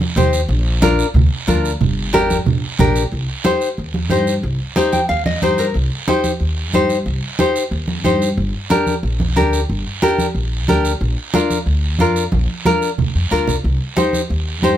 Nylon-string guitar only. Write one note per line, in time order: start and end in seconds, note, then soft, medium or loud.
0.16 0.40 D#4 medium
0.16 0.40 G4 medium
0.16 0.40 C5 medium
0.82 1.05 D4 medium
0.82 1.05 F4 medium
0.82 1.06 A#4 loud
1.47 1.71 D4 medium
1.47 1.71 F4 medium
1.47 1.71 A#4 medium
2.13 2.36 D4 medium
2.13 2.36 G4 medium
2.13 2.37 A#4 medium
2.79 3.02 D4 medium
2.79 3.02 G4 medium
2.79 3.03 A#4 medium
3.44 3.67 D#4 medium
3.44 3.68 G4 medium
3.44 3.68 C5 medium
4.10 4.33 D#4 medium
4.10 4.34 G4 medium
4.10 4.34 C5 medium
4.76 4.99 D#4 medium
4.76 4.99 G4 medium
4.76 5.00 C5 medium
4.93 5.08 G5 medium
5.09 5.24 F5 medium
5.26 5.41 D#5 medium
5.43 5.65 D#4 medium
5.43 5.65 G4 medium
5.43 5.66 C5 medium
5.59 5.74 A#4 medium
6.08 6.31 D#4 medium
6.08 6.31 G4 medium
6.08 6.31 C5 medium
6.74 6.97 D#4 medium
6.74 6.97 G4 medium
6.74 6.97 C5 medium
7.39 7.62 D#4 medium
7.39 7.62 G4 medium
7.39 7.63 C5 medium
8.04 8.28 D#4 medium
8.04 8.28 G4 medium
8.04 8.28 C5 medium
8.70 8.93 D4 medium
8.70 8.94 G4 medium
8.70 8.94 A#4 medium
9.36 9.59 D4 medium
9.36 9.60 G4 medium
9.36 9.60 A#4 medium
10.02 10.25 D4 medium
10.02 10.26 G4 medium
10.02 10.26 A#4 medium
10.68 10.91 D4 medium
10.68 10.91 G4 medium
10.68 10.92 A#4 medium
11.34 11.57 D4 medium
11.34 11.57 F4 medium
11.34 11.57 A#4 loud
12.00 12.23 D4 medium
12.00 12.23 F4 medium
12.00 12.23 A#4 medium
12.65 12.89 D4 medium
12.65 12.89 F4 medium
12.65 12.89 A#4 loud
13.31 13.54 D4 medium
13.31 13.54 F4 medium
13.31 13.54 A#4 medium
13.96 14.20 D#4 medium
13.96 14.20 G4 medium
13.96 14.20 C5 medium
14.63 14.77 D#4 medium
14.63 14.77 G4 medium
14.63 14.77 C5 medium